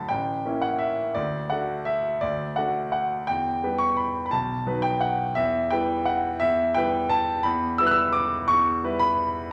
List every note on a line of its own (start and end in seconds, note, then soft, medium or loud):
0.00 0.12 D2 medium
0.00 0.12 F#3 soft
0.00 0.12 A3 soft
0.00 0.13 D4 soft
0.00 0.12 F#5 medium
0.00 0.13 A5 medium
0.00 0.12 B5 medium
0.09 0.44 A1 medium
0.09 0.62 G5 medium
0.46 1.13 A#3 soft
0.46 1.13 C#4 soft
0.46 1.13 E4 soft
0.62 0.80 F#5 medium
0.79 1.15 E5 medium
1.15 1.50 D2 medium
1.15 1.51 D5 medium
1.50 2.19 A3 soft
1.50 2.19 D4 soft
1.50 2.19 F#4 soft
1.50 1.87 F#5 medium
1.85 2.21 E5 medium
2.21 2.56 D2 medium
2.21 2.57 D5 medium
2.56 3.25 A3 soft
2.56 3.25 D4 soft
2.56 3.26 F#4 soft
2.56 2.90 F#5 medium
2.92 3.28 F#5 medium
3.27 3.63 E2 medium
3.27 3.80 G5 medium
3.64 4.29 G3 soft
3.64 4.29 B3 soft
3.64 4.29 B4 soft
3.78 3.97 C#6 loud
3.97 4.24 B5 medium
4.26 4.33 B5 medium
4.31 4.66 B1 medium
4.31 4.84 A5 medium
4.66 5.33 F#3 soft
4.66 5.33 D#4 soft
4.66 5.34 B4 medium
4.82 5.02 G5 medium
5.01 5.36 F#5 medium
5.35 5.70 E2 medium
5.35 5.71 E5 loud
5.70 6.38 G3 soft
5.70 6.38 E4 medium
5.70 6.38 B4 medium
5.70 6.06 G5 medium
6.05 6.41 F#5 medium
6.40 6.75 E2 medium
6.40 6.75 E5 loud
6.74 7.42 G3 medium
6.74 7.42 E4 medium
6.74 7.42 B4 medium
6.74 7.11 G5 loud
7.10 7.45 A5 loud
7.43 7.79 E2 medium
7.43 7.78 B5 medium
7.78 8.46 G3 medium
7.78 8.46 E4 medium
7.78 8.47 B4 medium
7.78 7.86 E6 loud
7.87 7.93 F#6 loud
7.91 8.14 E6 loud
8.13 8.49 D6 loud
8.48 8.83 E2 medium
8.48 9.00 C#6 loud
8.84 9.49 G3 medium
8.84 9.49 E4 medium
8.84 9.49 B4 medium
8.99 9.52 B5 loud